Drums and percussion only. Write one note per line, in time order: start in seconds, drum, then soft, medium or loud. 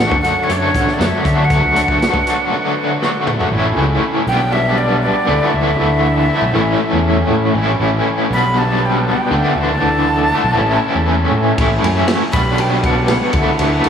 0.11 kick medium
0.24 closed hi-hat medium
0.49 closed hi-hat medium
0.75 kick medium
0.75 closed hi-hat medium
0.88 snare soft
1.01 snare loud
1.01 closed hi-hat medium
1.25 kick medium
1.25 closed hi-hat medium
1.50 kick medium
1.50 closed hi-hat medium
1.76 closed hi-hat medium
1.88 kick medium
2.02 snare loud
2.02 closed hi-hat medium
2.14 kick medium
2.27 closed hi-hat medium
3.02 snare soft
3.27 mid tom medium
3.40 floor tom medium
11.58 kick loud
11.58 ride medium
11.84 ride medium
12.08 snare loud
12.08 ride medium
12.33 kick loud
12.33 ride medium
12.58 ride medium
12.84 kick medium
12.84 ride medium
13.08 snare medium
13.08 ride medium
13.33 kick loud
13.33 ride medium
13.59 ride medium
13.84 ride medium